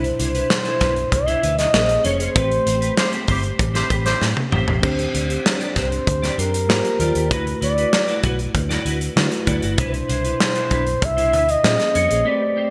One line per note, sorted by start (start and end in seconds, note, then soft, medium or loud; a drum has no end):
0.00 0.10 C2 loud
0.00 1.70 B2 medium
0.00 1.71 D4 medium
0.00 1.71 E4 medium
0.00 1.14 C5 medium
0.00 1.71 C5 medium
0.04 closed hi-hat soft
0.19 0.41 C2 loud
0.19 0.30 D4 medium
0.19 0.31 E4 medium
0.19 0.31 C5 medium
0.19 closed hi-hat medium
0.34 0.46 D4 medium
0.34 0.46 E4 medium
0.34 0.46 B4 medium
0.34 closed hi-hat soft
0.50 snare loud
0.50 high conga medium
0.65 0.79 D4 medium
0.65 0.80 E4 medium
0.65 0.80 C5 medium
0.65 closed hi-hat soft
0.81 1.03 B1 medium
0.81 0.92 D4 medium
0.81 0.93 E4 medium
0.81 0.93 B4 medium
0.81 kick medium
0.81 snare soft
0.81 closed hi-hat medium
0.81 muted conga medium
0.96 muted clean electric guitar stroke soft
0.96 closed hi-hat soft
1.12 1.34 C2 medium
1.12 1.60 E5 loud
1.12 muted clean electric guitar stroke soft
1.12 kick medium
1.12 closed hi-hat medium
1.12 muted conga soft
1.26 1.41 D4 medium
1.26 1.42 E4 medium
1.26 1.41 C5 medium
1.26 closed hi-hat medium
1.42 1.65 D2 medium
1.42 1.54 D4 medium
1.42 1.54 E4 medium
1.42 1.55 B4 medium
1.42 closed hi-hat medium
1.58 2.07 D#5 loud
1.58 muted clean electric guitar stroke soft
1.58 snare soft
1.58 closed hi-hat medium
1.73 1.96 A#1 medium
1.73 2.35 A#3 medium
1.73 2.36 C#4 medium
1.73 2.36 G#4 medium
1.73 1.81 A#4 medium
1.73 muted clean electric guitar stroke soft
1.73 snare loud
1.73 high conga medium
1.81 2.36 C5 medium
1.89 muted clean electric guitar stroke soft
1.89 closed hi-hat medium
2.04 2.27 F1 medium
2.04 2.19 C#4 medium
2.04 2.19 G#4 medium
2.04 2.19 C#5 medium
2.04 2.18 C#5 medium
2.04 closed hi-hat medium
2.04 high conga medium
2.19 2.32 C#4 medium
2.19 2.31 G#4 medium
2.19 3.40 C5 loud
2.19 2.31 C#5 medium
2.19 closed hi-hat medium
2.35 2.58 A1 loud
2.35 4.79 A3 medium
2.35 2.50 C4 medium
2.35 4.79 C4 medium
2.35 2.50 G4 loud
2.35 4.79 G4 medium
2.35 2.50 B4 loud
2.35 4.80 C5 medium
2.35 kick loud
2.35 closed hi-hat medium
2.35 muted conga soft
2.52 closed hi-hat medium
2.66 2.88 A1 loud
2.66 2.78 C4 medium
2.66 2.78 G4 medium
2.66 2.78 C5 medium
2.66 closed hi-hat medium
2.81 2.94 C4 medium
2.81 2.93 G4 medium
2.81 2.93 B4 medium
2.81 closed hi-hat medium
2.97 3.11 E4 medium
2.97 3.11 G4 medium
2.97 3.11 C5 medium
2.97 muted clean electric guitar stroke soft
2.97 snare loud
2.97 high conga medium
3.12 3.26 C4 medium
3.12 3.27 G4 medium
3.12 3.27 C5 medium
3.12 closed hi-hat soft
3.28 3.50 G1 medium
3.28 3.39 C4 medium
3.28 3.42 E4 medium
3.28 3.40 G4 medium
3.28 3.42 G4 medium
3.28 3.40 B4 medium
3.28 3.42 C5 medium
3.28 kick medium
3.28 open hi-hat medium
3.28 muted conga medium
3.43 muted clean electric guitar stroke soft
3.43 closed hi-hat soft
3.59 3.81 A1 medium
3.59 muted clean electric guitar stroke soft
3.59 kick medium
3.59 closed hi-hat medium
3.59 muted conga soft
3.74 3.88 C4 medium
3.74 3.88 E4 medium
3.74 3.89 G4 medium
3.74 3.88 G4 medium
3.74 3.89 C5 medium
3.74 3.88 C5 medium
3.74 snare soft
3.74 closed hi-hat medium
3.90 4.12 A1 medium
3.90 4.01 C4 medium
3.90 4.02 G4 medium
3.90 4.02 B4 medium
3.90 kick medium
3.90 closed hi-hat medium
4.05 4.25 E4 medium
4.05 4.25 G4 loud
4.05 4.26 C5 loud
4.05 muted clean electric guitar stroke soft
4.05 snare soft
4.05 closed hi-hat medium
4.20 4.32 A2 medium
4.20 muted clean electric guitar stroke soft
4.20 snare medium
4.20 high conga medium
4.37 muted clean electric guitar stroke soft
4.37 high tom medium
4.52 4.63 A1 medium
4.52 4.66 C4 medium
4.52 4.67 G4 medium
4.52 4.66 C5 medium
4.52 mid tom medium
4.52 high conga medium
4.67 4.79 A1 loud
4.67 4.79 C4 medium
4.67 4.79 G4 medium
4.67 4.79 C5 medium
4.67 floor tom medium
4.82 5.05 D2 loud
4.82 6.64 C4 medium
4.82 6.65 D4 medium
4.82 4.97 D4 medium
4.82 6.65 G4 medium
4.82 4.98 G4 medium
4.82 6.66 C5 medium
4.82 4.98 C5 medium
4.82 kick loud
4.82 crash medium
4.82 muted conga soft
4.99 closed hi-hat medium
5.14 5.36 D2 loud
5.14 5.25 D4 medium
5.14 5.25 G4 medium
5.14 5.26 D5 medium
5.14 closed hi-hat medium
5.29 5.41 D4 medium
5.29 5.41 G4 medium
5.29 5.40 C5 medium
5.29 closed hi-hat medium
5.46 snare loud
5.46 high conga soft
5.60 5.74 D4 medium
5.60 5.75 G4 medium
5.60 5.75 D5 medium
5.60 closed hi-hat soft
5.76 5.98 C2 medium
5.76 5.87 D4 medium
5.76 5.87 G4 medium
5.76 5.88 C5 medium
5.76 6.41 C5 medium
5.76 kick medium
5.76 snare soft
5.76 closed hi-hat medium
5.76 muted conga soft
5.91 muted clean electric guitar stroke soft
5.91 closed hi-hat soft
6.07 6.29 D2 medium
6.07 muted clean electric guitar stroke soft
6.07 kick medium
6.07 closed hi-hat medium
6.07 muted conga soft
6.22 6.36 D4 medium
6.22 6.37 G4 medium
6.22 6.37 D5 medium
6.22 snare soft
6.22 closed hi-hat medium
6.37 6.69 F#2 medium
6.37 6.49 D4 medium
6.37 6.49 G4 medium
6.37 7.32 A#4 medium
6.37 6.50 C5 medium
6.37 closed hi-hat medium
6.53 muted clean electric guitar stroke soft
6.53 closed hi-hat medium
6.68 6.80 G#2 medium
6.68 7.30 A#3 medium
6.68 7.31 F4 medium
6.68 7.31 G4 medium
6.68 7.31 C5 medium
6.68 muted clean electric guitar stroke soft
6.68 snare loud
6.68 high conga medium
6.84 muted clean electric guitar stroke soft
6.84 closed hi-hat medium
6.99 7.11 D#2 medium
6.99 7.14 F4 medium
6.99 7.14 G4 medium
6.99 7.14 D5 medium
6.99 closed hi-hat medium
6.99 high conga medium
7.15 7.31 D#2 loud
7.15 7.27 F4 medium
7.15 7.27 G4 medium
7.15 7.26 D5 medium
7.15 closed hi-hat medium
7.30 7.53 D2 loud
7.30 9.12 A3 medium
7.30 9.13 E4 medium
7.30 7.45 E4 medium
7.30 9.13 F#4 medium
7.30 7.45 F#4 medium
7.30 9.13 B4 medium
7.30 7.60 B4 medium
7.30 7.46 B4 loud
7.30 kick loud
7.30 closed hi-hat medium
7.47 closed hi-hat soft
7.61 7.84 D2 loud
7.61 7.73 E4 medium
7.61 7.73 F#4 medium
7.61 7.73 D5 medium
7.61 8.20 D5 loud
7.61 closed hi-hat medium
7.77 7.89 E4 medium
7.77 7.89 F#4 medium
7.77 7.88 B4 medium
7.77 closed hi-hat medium
7.93 snare loud
7.93 high conga medium
8.08 8.22 E4 medium
8.08 8.23 F#4 medium
8.08 8.22 D5 medium
8.08 closed hi-hat soft
8.23 8.45 B1 medium
8.23 8.35 E4 medium
8.23 8.35 F#4 medium
8.23 8.35 B4 medium
8.23 kick medium
8.23 closed hi-hat medium
8.23 muted conga soft
8.39 muted clean electric guitar stroke soft
8.39 closed hi-hat soft
8.54 8.76 D2 medium
8.54 muted clean electric guitar stroke soft
8.54 kick medium
8.54 closed hi-hat medium
8.54 muted conga soft
8.69 8.84 E4 medium
8.69 8.84 F#4 medium
8.69 8.84 D5 medium
8.69 snare soft
8.69 closed hi-hat medium
8.85 9.07 D2 medium
8.85 8.96 E4 medium
8.85 8.97 F#4 medium
8.85 8.97 B4 medium
8.85 closed hi-hat medium
9.00 muted clean electric guitar stroke soft
9.00 closed hi-hat medium
9.16 9.27 D3 medium
9.16 9.78 A3 medium
9.16 9.77 E4 medium
9.16 9.79 F#4 medium
9.16 9.79 B4 medium
9.16 muted clean electric guitar stroke soft
9.16 snare loud
9.16 high conga medium
9.31 muted clean electric guitar stroke soft
9.31 closed hi-hat medium
9.46 9.58 D2 medium
9.46 9.61 E4 medium
9.46 9.61 F#4 medium
9.46 9.61 D5 medium
9.46 kick medium
9.46 closed hi-hat medium
9.46 high conga medium
9.62 9.74 G1 medium
9.62 9.75 E4 medium
9.62 9.74 F#4 medium
9.62 9.74 D5 medium
9.62 closed hi-hat medium
9.77 10.00 C2 loud
9.77 11.60 B2 medium
9.77 9.92 D4 medium
9.77 11.60 D4 medium
9.77 9.93 E4 medium
9.77 11.61 E4 medium
9.77 9.93 B4 loud
9.77 11.61 C5 medium
9.77 11.06 C5 medium
9.77 kick loud
9.77 closed hi-hat loud
9.77 muted conga soft
9.94 closed hi-hat medium
10.08 10.31 C2 loud
10.08 10.20 D4 medium
10.08 10.21 E4 medium
10.08 10.21 C5 medium
10.08 closed hi-hat medium
10.24 10.37 D4 medium
10.24 10.36 E4 medium
10.24 10.36 B4 medium
10.24 closed hi-hat soft
10.40 muted clean electric guitar stroke soft
10.40 snare loud
10.40 high conga medium
10.55 10.69 D4 medium
10.55 10.70 E4 medium
10.55 10.70 C5 medium
10.55 closed hi-hat soft
10.71 10.93 B1 loud
10.71 10.82 D4 medium
10.71 10.83 E4 medium
10.71 10.83 B4 medium
10.71 kick medium
10.71 closed hi-hat medium
10.71 muted conga medium
10.86 muted clean electric guitar stroke soft
10.86 closed hi-hat soft
11.01 11.33 C2 medium
11.01 11.52 E5 loud
11.01 muted clean electric guitar stroke soft
11.01 kick loud
11.01 closed hi-hat medium
11.01 muted conga soft
11.17 11.31 D4 medium
11.17 11.32 E4 medium
11.17 11.32 C5 medium
11.17 closed hi-hat medium
11.32 11.55 D2 medium
11.32 11.44 D4 medium
11.32 11.44 E4 medium
11.32 11.45 B4 medium
11.32 closed hi-hat medium
11.48 12.30 D#5 loud
11.48 muted clean electric guitar stroke soft
11.48 closed hi-hat medium
11.63 11.75 A#2 loud
11.63 12.26 A#3 medium
11.63 12.26 C#4 medium
11.63 12.26 G#4 medium
11.63 12.26 C5 medium
11.63 muted clean electric guitar stroke soft
11.63 snare loud
11.63 high conga medium
11.79 muted clean electric guitar stroke soft
11.79 snare soft
11.79 closed hi-hat medium
11.94 12.06 F2 medium
11.94 12.09 C#4 medium
11.94 12.09 G#4 medium
11.94 12.08 C#5 medium
11.94 closed hi-hat medium
11.94 high conga medium
12.10 12.22 A#1 medium
12.10 12.22 C#4 medium
12.10 12.22 G#4 medium
12.10 12.21 C#5 medium
12.10 closed hi-hat medium
12.25 12.70 A3 medium
12.25 12.40 C4 medium
12.25 12.70 C4 medium
12.25 12.40 G4 medium
12.25 12.70 G4 medium
12.25 12.41 B4 medium
12.25 12.70 C5 medium
12.25 12.70 D5 loud
12.56 12.68 C4 medium
12.56 12.68 G4 medium
12.56 12.69 C5 medium